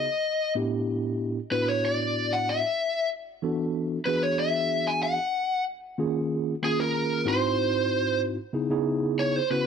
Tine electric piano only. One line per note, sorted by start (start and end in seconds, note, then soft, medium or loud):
0.55 1.38 A2 medium
0.55 1.38 B3 medium
0.55 1.38 D4 medium
0.55 1.38 E4 medium
0.55 1.39 G4 medium
1.51 2.61 A2 medium
1.51 2.61 B3 medium
1.51 2.62 D4 medium
1.51 2.62 E4 medium
1.51 2.62 F#4 medium
3.42 3.98 E3 medium
3.42 3.98 B3 medium
3.42 3.98 D4 medium
3.42 3.98 F#4 medium
3.42 3.98 A4 medium
4.06 5.17 E3 medium
4.06 5.17 B3 medium
4.06 5.17 D4 medium
4.06 5.17 F#4 medium
4.06 5.18 G#4 medium
5.98 6.54 D#3 medium
5.98 6.54 A#3 medium
5.98 6.54 C#4 medium
5.98 6.54 F4 medium
5.98 6.54 G#4 medium
6.62 7.26 D#3 medium
6.62 7.27 A#3 medium
6.62 7.27 C#4 medium
6.62 7.27 F4 medium
6.62 7.27 G#4 medium
7.25 8.36 G#2 medium
7.25 8.37 C4 medium
7.25 8.37 D#4 medium
7.25 8.37 E4 medium
7.25 8.37 F#4 medium
8.53 8.68 C#3 medium
8.53 8.68 B3 medium
8.53 8.68 D#4 medium
8.53 8.68 E4 medium
8.53 8.68 G#4 medium
8.70 9.39 C#3 medium
8.70 9.39 B3 medium
8.70 9.40 D#4 medium
8.70 9.40 E4 medium
8.70 9.40 G#4 medium
9.50 9.67 C#3 medium
9.50 9.67 B3 medium
9.50 9.67 C#4 medium
9.50 9.67 E4 medium
9.50 9.67 F#4 medium